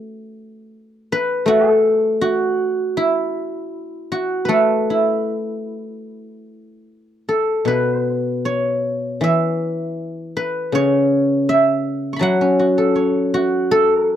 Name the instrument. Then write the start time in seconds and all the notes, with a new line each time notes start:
guzheng
Already playing: A3 A4 B4
1.12 B4
1.46 A3 F#4
1.71 A4
2.21 F#4
2.97 E4
4.12 F#4
4.45 A3 B4
4.49 A4
4.90 E4
7.29 A4
7.65 B2 B4
8.45 C#5
9.21 E3 E5
10.37 B4
10.72 C#3 C#5
11.49 E5
12.13 B5 C#6
12.19 F#3 F#5 A5
12.41 C#4
12.59 F#4
12.78 A4
12.96 C#5
13.34 F#4
13.71 A4